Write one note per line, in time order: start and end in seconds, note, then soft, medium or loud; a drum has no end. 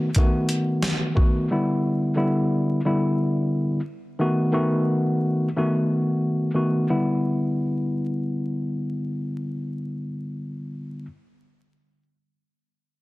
0.15 1.10 D#3 medium
0.15 1.11 A3 medium
0.15 1.11 B3 medium
0.15 kick medium
0.15 closed hi-hat medium
0.19 1.11 F#4 loud
0.49 closed hi-hat medium
0.83 snare loud
0.83 closed hi-hat medium
1.15 1.47 D#3 medium
1.15 1.47 A3 medium
1.15 1.48 B3 medium
1.15 1.48 F#4 medium
1.15 kick medium
1.50 2.13 D3 loud
1.50 2.13 G3 medium
1.50 2.14 B3 medium
1.50 2.14 E4 loud
2.16 2.80 D3 loud
2.16 2.80 G3 medium
2.16 2.80 B3 medium
2.16 2.81 E4 loud
2.85 3.79 D3 medium
2.85 3.79 G3 medium
2.85 3.80 B3 medium
2.85 3.80 E4 loud
4.19 4.51 D#3 medium
4.19 4.51 A3 medium
4.19 4.52 B3 medium
4.19 4.52 F#4 loud
4.52 5.47 D#3 medium
4.52 5.48 A3 medium
4.52 5.48 B3 medium
4.52 5.48 F#4 loud
5.56 6.50 D#3 medium
5.56 6.50 A3 medium
5.56 6.50 B3 medium
5.56 6.51 F#4 loud
6.54 6.86 D#3 medium
6.54 6.87 A3 medium
6.54 6.87 B3 medium
6.54 6.87 F#4 medium
6.89 11.05 D3 medium
6.89 11.05 G3 medium
6.89 11.05 B3 medium
6.89 11.06 E4 medium